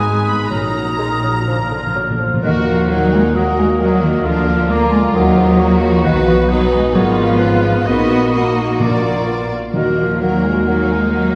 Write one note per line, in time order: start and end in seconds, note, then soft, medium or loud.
0.00 0.49 G#1 soft
0.00 0.49 G#2 soft
0.00 0.50 G#3 soft
0.00 0.27 G#3 soft
0.00 0.49 D#4 soft
0.00 0.27 D#4 soft
0.00 0.50 B4 soft
0.00 0.27 G#5 medium
0.00 0.49 D#6 soft
0.27 0.51 B3 soft
0.27 0.51 G#4 soft
0.27 0.51 B5 soft
0.27 0.52 B5 medium
0.50 2.23 A#1 soft
0.50 2.22 A#2 soft
0.50 1.19 A#2 medium
0.50 0.73 D#3 soft
0.50 0.86 F#3 soft
0.50 0.73 D#4 soft
0.50 1.48 D#4 soft
0.50 1.45 A#4 soft
0.50 1.92 A#5 medium
0.50 1.95 A#5 soft
0.50 1.45 D#6 soft
0.76 0.99 F#3 soft
0.76 0.99 F#4 soft
0.99 1.23 D#3 soft
0.99 1.10 G#3 medium
0.99 1.23 D#4 soft
1.23 1.34 F#3 soft
1.23 1.47 F#3 soft
1.23 1.47 F#4 soft
1.46 1.54 A#2 soft
1.46 1.69 D3 soft
1.46 1.58 F3 soft
1.46 2.19 D4 soft
1.46 1.70 D4 soft
1.46 2.18 A#4 soft
1.46 2.20 F6 soft
1.55 1.62 A#2 soft
1.63 1.70 A#2 soft
1.71 1.78 A#2 soft
1.71 1.82 D3 soft
1.71 1.95 F3 soft
1.71 1.95 F4 soft
1.79 1.85 A#2 soft
1.86 1.94 A#2 soft
1.95 2.01 A#2 soft
1.95 2.20 D3 soft
1.95 2.06 F#3 soft
1.95 2.20 D4 soft
2.03 2.09 A#2 soft
2.10 2.17 A#2 soft
2.18 2.25 A#2 medium
2.18 2.42 F3 soft
2.18 2.43 F3 soft
2.18 2.43 F4 soft
2.26 2.32 A#2 medium
2.34 2.41 A#2 medium
2.42 4.21 D#2 medium
2.42 2.86 A#2 medium
2.42 3.08 D#3 medium
2.42 2.52 D#3 medium
2.42 2.86 A#3 medium
2.42 2.87 A#3 soft
2.42 2.86 F#4 medium
2.42 2.87 F#4 soft
2.42 2.87 F#4 medium
2.42 2.86 A#4 medium
2.42 2.91 A#4 medium
2.42 2.50 D#5 medium
2.42 3.37 F#5 medium
2.67 2.89 F3 medium
2.67 2.73 F5 medium
2.89 3.34 A#2 soft
2.89 3.13 F#3 medium
2.89 3.34 A#3 medium
2.89 3.37 D#4 medium
2.89 3.35 D#4 medium
2.89 3.34 F#4 medium
2.89 3.34 A#4 medium
2.89 3.12 F#5 medium
3.13 3.21 G#3 medium
3.13 3.35 G#5 medium
3.35 3.79 A#2 soft
3.35 3.44 F#3 medium
3.35 3.79 A#3 medium
3.35 4.26 A#3 soft
3.35 3.82 F#4 soft
3.35 3.79 F#4 medium
3.35 3.79 A#4 medium
3.35 3.80 D#5 soft
3.35 3.57 F#5 medium
3.57 3.66 G#3 medium
3.57 3.80 G#5 medium
3.80 4.24 A#2 soft
3.80 4.03 F#3 medium
3.80 4.24 A#3 soft
3.80 4.24 F#4 medium
3.80 4.24 A#4 soft
3.80 4.25 A#4 medium
3.80 4.26 D#5 soft
3.80 4.03 F#5 medium
4.03 4.25 D#3 medium
4.03 4.25 D#5 medium
4.24 5.15 D2 medium
4.24 5.13 D3 soft
4.24 4.46 F3 medium
4.24 4.69 A#3 medium
4.24 4.69 D4 medium
4.24 4.69 F4 medium
4.24 4.69 F4 soft
4.24 4.72 A#4 medium
4.24 4.70 A#4 medium
4.24 4.72 F5 soft
4.24 4.46 F5 medium
4.47 4.70 F3 medium
4.47 4.53 F5 medium
4.69 5.13 A#3 medium
4.69 4.93 A#3 medium
4.69 5.14 A#3 medium
4.69 5.14 F4 medium
4.69 5.17 F4 medium
4.69 5.14 F4 medium
4.69 5.60 F4 medium
4.69 5.14 A#4 medium
4.69 5.17 D5 medium
4.69 4.91 A#5 medium
4.92 5.15 G#3 medium
4.92 5.15 G#5 medium
5.14 6.02 D#2 medium
5.14 5.39 A#2 medium
5.14 5.80 F#3 medium
5.14 6.02 A#3 medium
5.14 6.03 A#3 medium
5.14 5.59 D#4 medium
5.14 6.04 D#4 medium
5.14 6.03 F#4 medium
5.14 6.02 A#4 medium
5.14 5.61 D#5 medium
5.14 5.82 F#5 medium
5.37 5.60 G#2 medium
5.59 5.83 A#2 medium
5.59 6.03 F4 medium
5.59 6.47 F#4 medium
5.59 6.06 C#5 medium
5.81 6.06 C#3 medium
5.81 6.04 F3 medium
5.81 6.04 F5 medium
6.03 6.93 B1 medium
6.03 6.95 B2 medium
6.03 6.26 D#3 medium
6.03 6.47 B3 medium
6.03 6.48 B3 medium
6.03 6.47 F#4 medium
6.03 6.95 F#4 medium
6.03 6.48 F#4 medium
6.03 6.47 B4 medium
6.03 6.51 B4 medium
6.03 6.26 D#5 medium
6.26 6.49 F3 medium
6.26 6.32 F5 medium
6.48 6.70 F#3 medium
6.48 6.92 B3 medium
6.48 6.93 B3 medium
6.48 7.37 D#4 medium
6.48 6.92 F#4 medium
6.48 6.93 F#4 medium
6.48 6.92 B4 medium
6.48 6.96 D#5 medium
6.48 6.70 F#5 medium
6.71 6.79 G#3 medium
6.71 6.94 G#5 medium
6.93 7.86 G#1 medium
6.93 7.39 A#2 medium
6.93 7.02 F#3 medium
6.93 7.38 B3 medium
6.93 7.84 B3 medium
6.93 7.86 F4 medium
6.93 7.85 G#4 medium
6.93 7.84 B4 medium
6.93 7.41 C#5 medium
6.93 7.15 F#5 medium
7.16 7.62 F3 medium
7.16 7.62 F5 medium
7.39 7.88 G#2 medium
7.39 7.86 C#4 medium
7.39 7.86 F4 medium
7.39 7.88 B4 soft
7.63 7.71 F3 medium
7.63 7.86 F5 medium
7.85 9.50 A#1 medium
7.85 8.64 A#2 soft
7.85 8.32 A#3 medium
7.85 8.32 B3 medium
7.85 8.82 D#4 medium
7.85 8.33 D#4 medium
7.85 9.47 F#4 medium
7.85 8.32 F#4 medium
7.85 8.33 F#4 soft
7.85 8.32 D#5 medium
7.85 8.82 D#5 medium
7.85 8.33 B5 medium
8.33 8.79 A#3 soft
8.33 9.27 A#3 medium
8.33 8.79 F#4 soft
8.33 8.80 F#4 medium
8.33 8.79 D#5 soft
8.33 9.28 A#5 medium
8.80 9.46 A#2 medium
8.80 9.49 A#2 soft
8.80 9.52 A#3 soft
8.80 9.27 D4 soft
8.80 9.54 F4 soft
8.80 9.51 F4 soft
8.80 9.51 D5 soft
8.80 9.52 D5 medium
9.28 9.51 B3 soft
9.73 11.35 D#2 medium
9.73 10.17 A#2 soft
9.73 10.39 D#3 medium
9.73 9.83 D#3 medium
9.73 10.17 A#3 medium
9.73 10.17 A#3 soft
9.73 10.17 F#4 soft
9.73 10.23 F#4 soft
9.73 10.17 F#4 soft
9.73 10.17 A#4 soft
9.73 9.96 D#5 medium
9.97 10.20 F3 medium
9.97 10.20 F5 medium
10.20 10.65 A#2 soft
10.20 10.44 F#3 medium
10.20 10.66 A#3 soft
10.20 11.12 D#4 soft
10.20 10.65 F#4 soft
10.20 10.66 F#4 soft
10.20 11.35 A#4 soft
10.20 10.65 A#4 soft
10.20 10.43 F#5 medium
10.44 10.67 G#3 medium
10.44 10.67 G#5 medium
10.66 11.14 A#2 soft
10.66 10.90 F#3 medium
10.66 11.11 A#3 soft
10.66 11.35 D#4 medium
10.66 11.11 F#4 soft
10.66 11.12 F#4 soft
10.66 11.11 A#4 soft
10.66 10.72 F#5 medium
10.90 11.13 G#3 medium
10.90 10.96 G#5 soft
11.12 11.35 D#3 soft
11.12 11.35 F#3 medium
11.12 11.35 A#3 soft
11.12 11.35 D#4 soft
11.12 11.35 F#4 soft
11.12 11.35 A#4 soft
11.12 11.19 F#5 medium